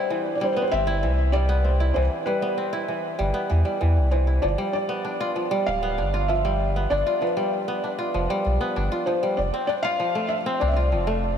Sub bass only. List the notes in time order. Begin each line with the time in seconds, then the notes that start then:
0.73 G1
1.04 C2
1.96 C2
3.20 G1
3.51 E2
3.82 E2
3.98 C2
4.44 G1
5.67 D1
5.98 G1
6.91 G1
8.15 F1
8.46 B1
8.77 G1
9.38 F1
10.62 C2
10.93 F1